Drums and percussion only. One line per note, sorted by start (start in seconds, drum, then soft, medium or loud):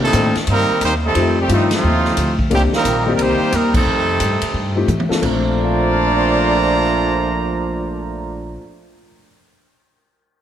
0.13 kick soft
0.13 hi-hat pedal medium
0.13 ride medium
0.35 snare medium
0.35 ride soft
0.47 kick soft
0.47 ride medium
0.81 kick soft
0.81 hi-hat pedal medium
0.81 ride medium
1.15 kick soft
1.15 ride medium
1.49 kick soft
1.49 hi-hat pedal medium
1.49 ride medium
1.71 snare medium
1.71 ride medium
2.05 snare soft
2.17 kick soft
2.17 hi-hat pedal medium
2.17 ride medium
2.39 kick medium
2.51 ride medium
2.73 snare medium
2.85 kick soft
2.85 hi-hat pedal medium
2.85 ride medium
3.19 kick soft
3.19 ride medium
3.52 kick soft
3.52 hi-hat pedal medium
3.52 ride medium
3.74 kick loud
3.74 crash medium
4.20 kick soft
4.20 hi-hat pedal medium
4.20 ride medium
4.42 ride medium
4.54 kick soft
4.88 hi-hat pedal medium
4.88 high tom medium
5.00 high tom medium
5.12 snare loud
5.22 kick medium
5.22 crash medium